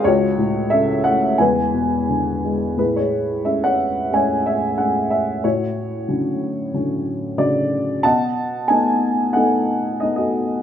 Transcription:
<<
  \new Staff \with { instrumentName = "Upright piano" } { \time 4/4 \key e \mixolydian \tempo 4 = 91 << { cis''4 e''8 fis''8 gis''4. r8 | \key a \major b'16 cis''8. e''16 fis''8. gis''8 e''8 fis''8 e''8 | cis''2 r4 d''4 | a''4 gis''4 fis''4 dis''16 dis''8. | } \\ { fis'4 a'8 a'8 b'4. r8 | <e' gis'>16 <e' gis'>4 cis''8. <cis'' e''>2 | fis'2 r4 fis'4 | <dis'' fis''>4 dis''4 <a' dis''>4~ <a' dis''>16 <fis' a'>8. | } >> }
  \new Staff \with { instrumentName = "Upright piano" } { \clef bass \time 4/4 \key e \mixolydian cis,8 a,8 cis8 a8 <e,, e,>8 b,8 d8 gis8 | \key a \major a,4 <gis a cis'>4 <gis a cis'>4 <gis a cis'>4 | a,4 <d fis cis'>4 <d fis cis'>4 <cis d fis>4 | b,4 <a b dis'>4 <a b dis'>4 <a b dis'>4 | }
>>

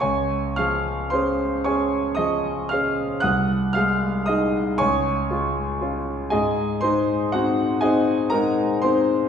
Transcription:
\new Staff \with { instrumentName = "Grand piano" } { \time 6/8 \key des \major \tempo 4. = 39 << { <des'' aes'' des'''>8 <f'' f'''>8 <c'' c'''>8 <des'' aes'' des'''>8 <ees'' ees'''>8 <f'' f'''>8 | <ges'' ees''' ges'''>8 <f'' f'''>8 <ees'' ees'''>8 <des'' aes'' des'''>4. | <aes' ees'' aes''>8 <c'' c'''>8 <ges' ges''>8 <aes' ees'' aes''>8 <bes' bes''>8 <c'' c'''>8 | } \\ { des,8 <f aes'>8 <des' aes'>8 <des' aes'>8 <f aes'>8 <des' aes'>8 | c,8 <aes aes'>8 <ees' aes'>8 des,8 <aes f'>8 <des' f'>8 | aes,8 <aes ees'>8 <c' ees'>8 <c' ees'>8 <aes ees'>8 <c' ees'>8 | } >> }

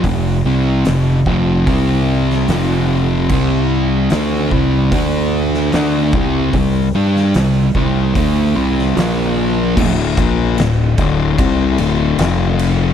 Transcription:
<<
  \new Staff \with { instrumentName = "Distorted electric guitar" } { \clef bass \time 4/4 \key d \minor \tempo 4 = 74 <f, c>8 <c g c'>8 <f, c>8 <f, c f>8 <c g c'>4 <f, c f>4 | <c g c'>4 <d a d'>8 <c g c'>8 <d a d'>4 <d a d'>8 <c g c'>8 | <c g>8 <g d' g'>8 <c g>8 <c g c'>8 <d a d'>8 <c g c'>8 <bes, f bes>4 | r1 | }
  \new Staff \with { instrumentName = "Distorted electric guitar" } { \clef bass \time 4/4 \key d \minor <f, c>8 <c g c'>8 <f, c>8 <f, c f>8 <c g c'>4 <f, c f>4 | <c g c'>4 <d a d'>8 <c g c'>8 <d a d'>4 <d a d'>8 <c g c'>8 | <c g>8 <g d' g'>8 <c g>8 <c g c'>8 <d a d'>8 <c g c'>8 <bes, f bes>4 | <d, a, d>8 <bes, f bes>8 <d, a,>8 <d, a, d>8 <c g c'>8 <d, a, d>8 <f, c f>4 | }
  \new Staff \with { instrumentName = "Fingered electric bass" } { \clef bass \time 4/4 \key d \minor f,,8 c,8 f,,8 f,,8 c,4 f,,4 | c,4 d,8 c,8 d,4 d,8 c,8 | c,8 g,8 c,8 c,8 d,8 c,8 bes,,4 | d,,8 bes,,8 d,,8 d,,8 c,8 d,,8 f,,4 | }
  \new DrumStaff \with { instrumentName = "Drums" } \drummode { \time 4/4 <hho bd>4 <hho sn>8 bd8 <hho bd>8. sn16 <hho sn>4 | <cymc bd>4 <hho sn>8 bd8 <hho bd>8. sn16 <hho sn>8 bd8 | <hho bd>8. sn16 <hho sn>8 bd8 <hho bd>8. sn16 <hho sn>4 | <cymc bd>8 <bd cymr>8 <cymr sn>8 <bd cymr>8 <bd cymr>8 cymr8 <cymr sn>8 cymr8 | }
>>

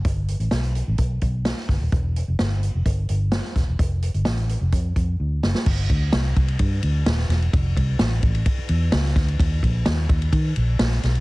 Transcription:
<<
  \new Staff \with { instrumentName = "Fingered electric bass" } { \clef bass \time 4/4 \key g \mixolydian \tempo 4 = 128 g,,8. a,,16 b,,8. a,,16 b,,8 b,,8. r16 g,,16 ees,,16 | e,,8. f,,16 g,,8. f,,16 g,,8 g,,8. r16 e,,16 e,,16 | f,,8. g,,16 a,,8. f,,16 f,8 f,8 d,8 fis,,16 r16 | g,,8 d,8 c,8 c,8 g,8 d,8 ees,,8 e,,8 |
f,,8 c,8 a,,8 a,,8 r8 e,8 cis,8 d,8 | ees,8 bes,,8 ees,8 ees,8 ees8 bes,,8 bes,,8 b,,8 | }
  \new DrumStaff \with { instrumentName = "Drums" } \drummode { \time 4/4 <hh bd>8 hh16 hh16 <hh sn>16 hh16 hh8 <hh bd>8 <hh bd>8 <hh sn>16 sn16 <hho bd sn>8 | <hh bd>8 hh8 <hh sn>8 hh8 <hh bd>8 hh8 <hh sn>16 sn16 <hh bd sn>8 | <hh bd>8 hh16 hh16 <hh sn>16 hh16 hh8 <hh bd>8 <hh bd>8 r8 sn16 sn16 | <cymc bd>8 <bd cymr>8 <cymr sn>8 <bd cymr>16 cymr16 <bd cymr>8 cymr8 <cymr sn>16 sn16 <cymr sn>16 cymr16 |
<bd cymr>8 <bd cymr>8 <cymr sn>8 <bd cymr>16 cymr16 <bd cymr>8 cymr8 <cymr sn>16 sn16 <bd cymr sn>16 cymr16 | <bd cymr>8 <bd cymr>8 <cymr sn>8 <bd cymr>16 cymr16 <bd cymr>8 cymr8 <cymr sn>16 sn16 <cymr sn>16 cymr16 | }
>>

